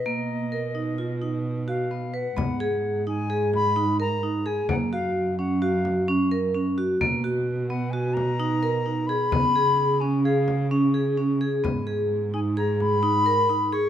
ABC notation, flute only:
X:1
M:5/4
L:1/8
Q:1/4=130
K:Blyd
V:1 name="Flute"
d6- d e2 f- | f3 g2 b2 a2 g | f e2 f e2 z4 | z3 f g a4 b- |
b3 g e2 z4 | z3 g a b4 c' |]